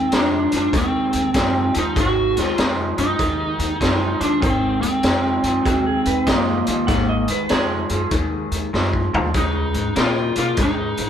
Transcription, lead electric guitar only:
Already playing: C4
0.15 D4
0.57 D4
0.77 C4
1.79 D#4
2.00 F#4
2.40 F4
2.99 D#4
4.21 D4
4.42 C4
4.82 C4
6.38 A#3
9.38 D#4
10.00 F4
10.39 F4
10.62 D#4

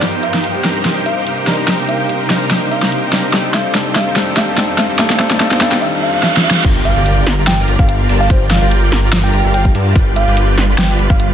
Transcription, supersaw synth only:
0.02 D#4 G4 A#4 C5 G5
0.34 D#4 G4 A#4 C5 G5
0.65 D#4 G4 A#4 C5 A#5
0.85 D#4 G4 A#4 C5 G5
1.17 D#4 G4 A#4 C5 G5
1.47 D#4 G4 A#4 C5 A#5
1.68 D#4 G4 A#4 C5 G5
2.00 D#4 G4 A#4 C5 G5
2.30 D#4 G4 A#4 C5 A#5
2.51 D#4 G4 A#4 C5 G5
2.82 D#4 G4 A#4 C5 G5
3.13 D#4 G4 A#4 C5 A#5
3.33 D#4 G4 A4 C5 G5
3.65 D#4 G4 A4 C5 G5
3.75 D#4 G4 A4 C5 G5
4.07 D#4 G4 A4 C5 G5
4.16 D#4 G4 A4 C5 G5
4.48 D#4 G4 A4 C5 G5
4.58 D#4 G4 A4 C5 G5
4.89 D#4 G4 A4 C5 G5
4.99 D#4 G4 A4 C5 G5
5.20 D#4 G4 A4 C5 G5
5.40 D#4 G4 A4 C5 G5
5.61 D#4 G4 A4 C5 G5
6.64 F4 G4 A#4 D5 G5
6.96 F4 G4 A#4 D5 G5
7.27 F4 G4 A#4 D5 A#5
7.68 F4 G4 A#4 D5 A#5
7.79 F4 G4 A#4 D5 F5
8.09 F4 G4 A#4 D5 A5
8.30 F4 G4 A#4 D5 G5
8.62 F4 G4 A#4 D5 G5
8.92 F4 G4 A#4 D5 A#5
9.34 F4 G4 A#4 D5 A#5
9.45 F4 G4 A#4 D5 F5
9.75 F4 G4 A#4 D5 A5
9.96 F4 G4 B4 D5 G5
10.27 F4 G4 B4 D5 G5
10.58 F4 G4 B4 D5 B5
10.99 F4 G4 B4 D5 B5
11.10 F4 G4 B4 D5 F5

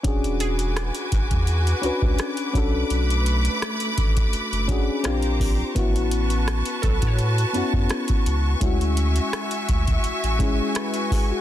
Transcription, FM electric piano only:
0.03 C#4 D4 F#4
0.07 G#4
1.82 C#4 D4 F#4
1.86 B4
2.53 C#4 D4 F#4
2.58 A4
4.68 C#4 D4 F#4
4.72 G#4
5.03 C4 D4 F4
5.08 G4
5.75 B3 C#4 E4 F#4
7.53 B3 C#4 E4
7.57 F#4
8.61 G#3 C#4 E4 F#4
10.39 G#3 C#4 E4 G#4
10.77 B4
11.12 G#4
11.32 F#4

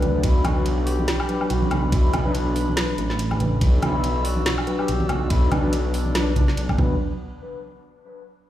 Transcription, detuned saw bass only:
Already playing: D2
0.24 B1
1.50 B1
2.98 A1
3.62 B1
4.88 B1
6.15 B1
6.57 B1
6.78 B1

